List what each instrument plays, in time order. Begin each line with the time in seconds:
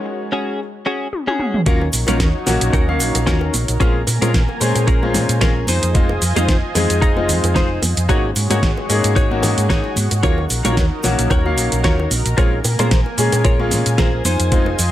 Already playing: analog synth pad G#3 F#4 C#5 G#5, grand piano G#3 C#4 D#4 F#4 A#4
0.05 muted clean electric guitar stroke
0.32 clean electric guitar C#4 F#4 G#4
0.86 clean electric guitar C#4 F#4 G#4
1.13 high tom
1.27 clean electric guitar C#4 F#4 G#4, high tom
1.40 mid tom
1.54 mid tom
1.66 fingered electric bass D#2, grand piano F#3 A#3 C#4 F4, clean electric guitar C#4 D#4 F#4 A#4, analog synth pad D#4 F#4 A#4 C#5, kick, closed hi-hat, cabasa, shaker
1.81 high bongo
1.92 fingered electric bass A#1, open hi-hat, cabasa, shaker
2.07 fingered electric bass A#1, grand piano F#3 A#3 C#4 F4, clean electric guitar C#4 D#4 F#4 A#4, closed hi-hat, high bongo, high conga, low conga, cabasa, shaker
2.20 fingered electric bass D#2, kick, snare, closed hi-hat, cabasa, shaker
2.46 fingered electric bass A#1, grand piano F#3 A#3 C#4 F#4, muted clean electric guitar stroke, snare, open hi-hat, high bongo, cabasa, shaker
2.61 fingered electric bass A#1, closed hi-hat, cabasa, shaker
2.73 fingered electric bass D#2, clean electric guitar C#4 D#4 F#4 A#4, kick, closed hi-hat, high bongo, cabasa, shaker
2.88 grand piano F#3 A#3 C#4 F5, high conga
3.00 fingered electric bass A#1, open hi-hat, cabasa, shaker
3.15 fingered electric bass A#1, closed hi-hat, high bongo, cabasa, shaker
3.27 fingered electric bass D#2, grand piano F#3 A#3 C#4 F4, clean electric guitar C#4 D#4 F#4 A#4, kick, snare, closed hi-hat, cabasa, shaker
3.41 high bongo
3.54 fingered electric bass A#1, open hi-hat, high conga, cabasa, shaker
3.68 fingered electric bass A#1, closed hi-hat, cabasa, shaker
3.80 fingered electric bass A#1, grand piano G#3 C4 C#4 F4, analog synth pad A#3 G#5 A#5, clean electric guitar C#4 F4 G#4 A#4, kick, closed hi-hat, high bongo, cabasa, shaker
4.07 fingered electric bass A#2, open hi-hat, high bongo, cabasa, shaker
4.21 fingered electric bass A#2, grand piano G#3 C4 C#4 F4, clean electric guitar C#4 F4 G#4 A#4, closed hi-hat, high conga, low conga, cabasa, shaker
4.34 fingered electric bass A#1, kick, snare, closed hi-hat, cabasa, shaker
4.49 high bongo
4.60 fingered electric bass A#2, grand piano G#3 C#4 G#4 C5, muted clean electric guitar stroke, open hi-hat, cabasa, shaker
4.75 fingered electric bass A#2, closed hi-hat, high bongo, cabasa, shaker
4.87 fingered electric bass A#1, clean electric guitar C#4 F4 G#4 A#4, kick, closed hi-hat, cabasa, shaker
5.02 grand piano G#3 C#4 F4 C5, high conga
5.14 fingered electric bass A#2, snare, open hi-hat, high bongo, cabasa, shaker
5.29 fingered electric bass A#2, closed hi-hat, cabasa, shaker
5.41 fingered electric bass A#1, grand piano G#3 C4 C#4 F4, clean electric guitar C#4 F4 G#4 A#4, kick, snare, closed hi-hat, high bongo, cabasa, shaker
5.67 fingered electric bass F2, clean electric guitar D#4 F4 G#4 C5, analog synth pad F4 C5 D#5 G#5, open hi-hat, high conga, cabasa, shaker
5.82 fingered electric bass F2, closed hi-hat, high bongo, cabasa, shaker
5.94 fingered electric bass F1, grand piano G#3 C4 D#4 F4, kick, closed hi-hat, cabasa, shaker
6.09 high bongo
6.22 fingered electric bass F2, open hi-hat, cabasa, shaker
6.36 fingered electric bass F2, grand piano G#3 C4 D#4 F4, clean electric guitar D#4 F4 G#4 C5, closed hi-hat, high conga, low conga, cabasa, shaker
6.49 fingered electric bass F1, kick, snare, closed hi-hat, high bongo, cabasa, shaker
6.75 fingered electric bass F2, grand piano G#3 C4 D#4 G#4, muted clean electric guitar stroke, snare, open hi-hat, high bongo, cabasa, shaker
6.90 fingered electric bass F2, closed hi-hat, cabasa, shaker
7.02 fingered electric bass F1, clean electric guitar D#4 F4 G#4 D#5, kick, closed hi-hat, cabasa, shaker
7.16 grand piano G#3 C4 D#4 F4, high bongo, high conga
7.29 fingered electric bass F2, open hi-hat, cabasa, shaker
7.44 fingered electric bass F2, closed hi-hat, high bongo, cabasa, shaker
7.55 fingered electric bass F1, grand piano G#3 C4 D#4 F4, clean electric guitar D#4 F4 G#4 C5, kick, snare, closed hi-hat, cabasa, shaker
7.82 fingered electric bass F2, open hi-hat, high bongo, high conga, cabasa, shaker
7.97 fingered electric bass F2, closed hi-hat, cabasa, shaker
8.09 fingered electric bass G#1, analog synth pad G#3 F#4 G#4 C#5, grand piano A#3 C#4 D#4 F#4, clean electric guitar D#4 F#4 G#4 C#5, kick, closed hi-hat, high bongo, cabasa, shaker
8.36 fingered electric bass G#2, open hi-hat, cabasa, shaker
8.50 fingered electric bass G#2, grand piano A#3 C#4 D#4 F#4, clean electric guitar D#4 F#4 G#4 C#5, closed hi-hat, high bongo, high conga, low conga, cabasa, shaker
8.63 fingered electric bass G#1, kick, snare, closed hi-hat, cabasa, shaker
8.77 high bongo
8.89 fingered electric bass G#2, grand piano A#3 C#4 D#4 G#4, muted clean electric guitar stroke, open hi-hat, cabasa, shaker
9.04 fingered electric bass G#2, closed hi-hat, cabasa, shaker
9.16 fingered electric bass G#1, clean electric guitar D#4 F#4 G#4 C#5, kick, closed hi-hat, high bongo, cabasa, shaker
9.30 grand piano A#3 C#4 D#4 F#4, high conga
9.43 fingered electric bass G#2, snare, open hi-hat, high bongo, cabasa, shaker
9.58 fingered electric bass G#2, closed hi-hat, cabasa, shaker
9.70 fingered electric bass G#1, grand piano A#3 C#4 D#4 F#4, clean electric guitar D#4 F#4 G#4 C#5, kick, snare, closed hi-hat, cabasa, shaker
9.84 high bongo
9.96 fingered electric bass G#2, open hi-hat, high conga, cabasa, shaker
10.11 fingered electric bass G#2, closed hi-hat, high bongo, cabasa, shaker
10.23 fingered electric bass D#2, grand piano F#3 A#3 C#4 F4, clean electric guitar D#4 F#4 A#4 C#5, analog synth pad D#4 A#4, kick, closed hi-hat, cabasa, shaker
10.38 high bongo
10.49 fingered electric bass A#1, open hi-hat, cabasa, shaker
10.65 fingered electric bass A#1, grand piano F#3 A#3 C#4 F4, clean electric guitar D#4 F#4 A#4 C#5, closed hi-hat, high bongo, high conga, low conga, cabasa, shaker
10.77 fingered electric bass D#2, kick, snare, closed hi-hat, cabasa, shaker
11.03 fingered electric bass A#1, grand piano F#3 A#3 C#4 F#4, muted clean electric guitar stroke, snare, open hi-hat, high bongo, cabasa, shaker
11.19 fingered electric bass A#1, closed hi-hat, cabasa, shaker
11.30 clean electric guitar D#4 F#4 A#4 C#5, kick, closed hi-hat, high bongo, cabasa, shaker
11.45 grand piano F#3 A#3 C#4 F5, high conga
11.57 fingered electric bass A#1, open hi-hat, cabasa, shaker
11.72 fingered electric bass A#1, closed hi-hat, high bongo, cabasa, shaker
11.84 fingered electric bass D#2, grand piano F#3 A#3 C#4 F4, clean electric guitar D#4 F#4 A#4 C#5, kick, snare, closed hi-hat, cabasa, shaker
11.99 high bongo
12.11 fingered electric bass A#1, open hi-hat, high conga, cabasa, shaker
12.26 fingered electric bass A#1, closed hi-hat, cabasa, shaker
12.37 fingered electric bass A#1, grand piano G#3 C4 C#4 F4, analog synth pad A#3 G#5, clean electric guitar F4 G#4 A#4 C#5, kick, closed hi-hat, high bongo, cabasa, shaker
12.64 fingered electric bass A#2, open hi-hat, high bongo, cabasa, shaker
12.79 fingered electric bass A#2, grand piano G#3 C4 C#4 F4, clean electric guitar F4 G#4 A#4 C5, closed hi-hat, high conga, low conga, cabasa, shaker
12.91 fingered electric bass A#1, kick, snare, closed hi-hat, cabasa, shaker
13.06 high bongo
13.17 fingered electric bass A#2, grand piano G#3 C#4 G#4, muted clean electric guitar stroke, open hi-hat, cabasa, shaker
13.32 fingered electric bass A#2, closed hi-hat, high bongo, cabasa, shaker
13.44 fingered electric bass A#1, clean electric guitar F4 G#4 A#4 C#5, kick, closed hi-hat, cabasa, shaker
13.59 grand piano G#3 C#4 F4, high conga
13.71 fingered electric bass A#2, snare, open hi-hat, high bongo, cabasa, shaker
13.86 fingered electric bass A#2, closed hi-hat, cabasa, shaker
13.98 fingered electric bass A#1, grand piano G#3 C4 C#4 F4, clean electric guitar F4 G#4 A#4 C5, kick, snare, closed hi-hat, high bongo, cabasa, shaker
14.25 fingered electric bass F2, clean electric guitar D#4 F4 G#4 C5, analog synth pad F4 C5 D#5, open hi-hat, high conga, cabasa, shaker
14.39 fingered electric bass F2, closed hi-hat, high bongo, cabasa, shaker
14.52 fingered electric bass F1, grand piano G#3 C4 D#4 F4, kick, closed hi-hat, cabasa, shaker
14.66 high bongo
14.79 fingered electric bass F2, open hi-hat, cabasa, shaker